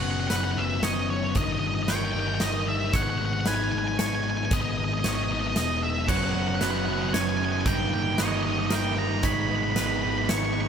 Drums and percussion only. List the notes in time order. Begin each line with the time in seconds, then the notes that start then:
0.30 snare, closed hi-hat
0.83 snare, closed hi-hat
1.35 kick, closed hi-hat
1.88 snare, closed hi-hat
2.40 snare, closed hi-hat
2.93 kick, closed hi-hat
3.46 snare, closed hi-hat
3.99 snare, closed hi-hat
4.51 kick, closed hi-hat
5.04 snare, closed hi-hat
5.56 snare, closed hi-hat
6.09 kick, crash
6.61 snare, closed hi-hat
7.14 snare, closed hi-hat
7.66 kick, closed hi-hat
8.18 snare, closed hi-hat
8.70 snare, closed hi-hat
9.23 kick, closed hi-hat
9.76 snare, closed hi-hat
10.29 snare, closed hi-hat